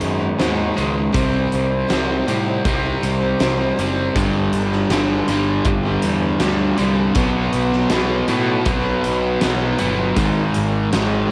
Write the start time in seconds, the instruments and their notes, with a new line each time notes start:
Already playing: overdriven electric guitar G#2 D#3 G#3
0.00 picked electric bass F#2, steel-string acoustic guitar D#3 G#3 B3 D#4, closed hi-hat
0.19 steel-string acoustic guitar G#3 B3 D#4
0.38 picked electric bass D#2, overdriven electric guitar G#2 D#3 G#3, steel-string acoustic guitar G#2 D#3 G#3 B3 D#4, snare, closed hi-hat
0.55 steel-string acoustic guitar G#3 B3 D#4
0.74 overdriven electric guitar G#2 D#3 G#3, steel-string acoustic guitar D#3 G#3 B3 D#4
0.78 picked electric bass C#2, closed hi-hat
1.12 picked electric bass C2, steel-string acoustic guitar C3 G3 C4 D#4, overdriven electric guitar C3 G3 C4, kick, closed hi-hat
1.50 steel-string acoustic guitar C3 G3 C4 D#4, closed hi-hat
1.54 picked electric bass C2
1.69 steel-string acoustic guitar G3 C4 D#4
1.87 steel-string acoustic guitar C3 G3 C4 D#4, overdriven electric guitar C3 G3 C4, snare, closed hi-hat
1.92 picked electric bass C2
2.26 picked electric bass A2, steel-string acoustic guitar C3 G3 C4 D#4, overdriven electric guitar C3 G3 C4, closed hi-hat
2.46 steel-string acoustic guitar G3 C4 D#4
2.65 picked electric bass C2, overdriven electric guitar C3 G3 C4, kick, closed hi-hat
2.83 steel-string acoustic guitar G3 C4 D#4
3.01 picked electric bass C2, steel-string acoustic guitar C3 G3 C4 D#4, closed hi-hat
3.21 steel-string acoustic guitar G3 C4 D#4
3.39 picked electric bass C2, steel-string acoustic guitar C3 G3 C4 D#4, overdriven electric guitar C3 G3 C4, snare, closed hi-hat
3.59 steel-string acoustic guitar G3 C4 D#4
3.76 picked electric bass F#1, steel-string acoustic guitar C3 G3 C4 D#4, overdriven electric guitar C3 G3, closed hi-hat
3.80 overdriven electric guitar C4
4.15 picked electric bass G1, overdriven electric guitar G2 D3 G3, kick, closed hi-hat
4.53 picked electric bass G1, closed hi-hat
4.72 snare
4.90 picked electric bass G1, overdriven electric guitar G2 D3 G3, snare, closed hi-hat
5.28 picked electric bass G1, overdriven electric guitar G2 D3 G3, closed hi-hat
5.65 picked electric bass G1, overdriven electric guitar G2 D3 G3, kick, closed hi-hat
6.02 picked electric bass E2, closed hi-hat
6.40 picked electric bass D2, overdriven electric guitar G2 D3 G3, snare, closed hi-hat
6.77 picked electric bass C2, overdriven electric guitar G2 D3 G3, closed hi-hat
7.14 picked electric bass B1, overdriven electric guitar B2 F#3 B3, kick, closed hi-hat
7.53 picked electric bass B1, closed hi-hat
7.72 snare
7.90 picked electric bass B1, overdriven electric guitar B2 F#3 B3, snare, closed hi-hat
8.28 picked electric bass A2, overdriven electric guitar B2 F#3 B3, closed hi-hat
8.65 picked electric bass B1, overdriven electric guitar B2 F#3 B3, kick, closed hi-hat
9.04 picked electric bass B1, closed hi-hat
9.41 picked electric bass B1, overdriven electric guitar B2 F#3 B3, snare, closed hi-hat
9.78 picked electric bass G1, overdriven electric guitar B2 F#3 B3, closed hi-hat
10.16 picked electric bass G#1, overdriven electric guitar G#2 D#3 G#3, kick, closed hi-hat
10.54 picked electric bass G#1, closed hi-hat
10.93 picked electric bass G#1, overdriven electric guitar G#2 D#3 G#3, snare, closed hi-hat
11.27 distorted electric guitar G#2 D#3